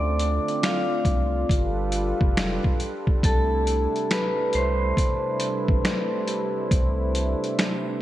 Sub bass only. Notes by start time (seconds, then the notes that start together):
Already playing: D2
1.05 C2
1.50 G1
2.21 F1
3.24 C2
4.55 C2
5.69 A1
6.71 C2